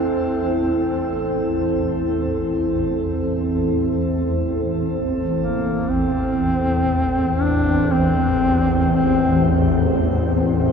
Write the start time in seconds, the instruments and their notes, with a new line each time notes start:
Already playing: synth drone A1 E2, duduk C4, ambient pad C4 E4 A4 C5, singing bowl E4
0.79 duduk C4
5.41 duduk A#3
5.90 duduk C4
7.42 duduk D4
7.91 duduk C4
8.93 duduk C4